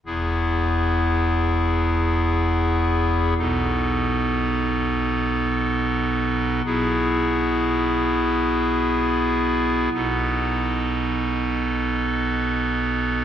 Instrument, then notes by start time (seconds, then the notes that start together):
pipe organ
0.05 E1 E2 B3 E4 G#4
3.38 B1 B2 B3 D#4 A4
6.65 B1 B2 B3 E4 G#4
9.94 B1 B2 B3 D#4 A4